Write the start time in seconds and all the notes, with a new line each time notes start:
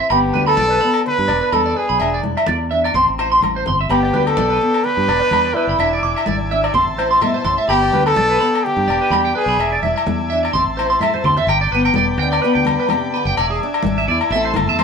0.10 G1 G2 B3 G4 B5, muted conga, low agogo
0.33 D2 D4 B4, high conga
0.46 A4 B5, low agogo
0.57 B1 G3 D5, high conga
0.70 B4
0.81 B3 B5, muted conga
0.94 low agogo
1.06 D3 B4, muted conga
1.18 G2
1.28 E1 D4 D5, muted conga, low agogo
1.41 B4
1.52 E2 G3 D4 A4 B5, high conga, low agogo
1.66 D5
1.76 G#4 B4
1.89 B1 B5
2.00 E1 E3 D4 E5, muted conga, low agogo
2.14 D5
2.23 E1 E4, high conga
2.37 E5, low agogo
2.47 E2 G#3 D5, high conga
2.71 D4 E5, muted conga
2.84 D5, low agogo
2.94 A1 A2 C4 C6, muted conga, low conga
3.08 A1
3.18 E4 C5, muted conga, low agogo
3.32 C6
3.42 A1 A3, high conga, low agogo
3.56 C5
3.66 G1 C4 C6, low conga
3.81 E5
3.89 G1 G2 B3 G4 D5 G5 B5, muted conga, low agogo
4.03 muted clean electric guitar stroke
4.13 D2 D4 B4, high conga
4.27 A4, low agogo
4.37 B1 G3 D5, high conga
4.50 B4
4.60 B3, muted conga
4.74 low agogo
4.84 D3 B4, muted conga
4.97 G2
5.07 E1 D4 D5, muted conga, low agogo
5.21 B4
5.31 E2 G3 D4 B5, high conga, low agogo
5.45 D5
5.54 E4 B4
5.67 F#1 B5
5.79 E1 E3 D4 E5 G#5 D6, muted conga, low agogo
5.93 D5
6.02 E1 E4 D6
6.16 E5, low agogo
6.26 G#1 G#3 D5, high conga
6.51 D4 E5, muted conga
6.64 D5, low agogo
6.74 A1 A2 C4 A5 C6, muted conga, low conga
6.87 A1
6.98 E4 C5, muted conga, low agogo
7.11 C6
7.21 A2 B2 E5, high conga, low agogo
7.34 C5
7.44 A1 A2 C6, low conga
7.58 E5
7.68 G1 G2 B3 G4 D5 G5 B5, muted conga, low agogo
7.82 D5
7.92 D2 D4 B4, high conga
8.06 A4 B5, low agogo
8.16 B1 G3 D5, high conga
8.30 B4
8.40 B3 B5, muted conga
8.55 low agogo
8.64 D3 G4, muted conga
8.77 G2
8.87 E1 D4 D5, muted conga, low agogo
9.01 B4
9.10 E2 G3 D4 B5, high conga, low agogo
9.25 G5
9.35 G#4 B4
9.46 B1 B5
9.57 E1 E3 D4 E5 G#5 D6, muted conga, low agogo
9.72 D5
9.82 E1 E4 E5, high conga
9.96 E5, low agogo
10.07 E2 G#3, high conga
10.30 D4 E5
10.43 D5, low agogo
10.53 A1 A2 C4 A5 C6, muted conga, low conga
10.66 A1
10.77 E4 C5, muted conga, low agogo
10.90 C6
11.00 A2 A3 E5, high conga, low agogo
11.14 C5, high conga
11.24 D2 C4 C6, low conga
11.37 E5, low conga
11.47 G1 G2 D5 G5 B5, muted conga, low agogo
11.61 D5
11.71 G1 B3 B4
11.85 G5, low agogo
11.94 E1 D5, high conga
11.98 G3
12.18 D2 G5
12.23 D4
12.32 D5, low agogo
12.42 D3 B3 B4, muted conga
12.55 D2 G5
12.65 B4, high conga, low agogo
12.80 B4
12.89 C3, muted clean electric guitar stroke, muted conga, high conga, low agogo
13.14 D3 B4
13.25 F#1 G5
13.37 E1 E3 D5 E5 G#5 D6, muted conga, low agogo
13.51 G#4
13.60 D4, muted conga
13.74 low agogo
13.83 G#1 G#3, high conga
13.98 E5
14.08 E2 E4 D5
14.21 low agogo
14.30 A1 A2 A3 E5 A5 C6, muted conga
14.35 C4 E4 A4
14.45 C5
14.54 F#1, muted steel-string acoustic guitar stroke, high conga, low conga, low agogo
14.67 E2 E5
14.79 A3 C5, muted conga, high conga, low agogo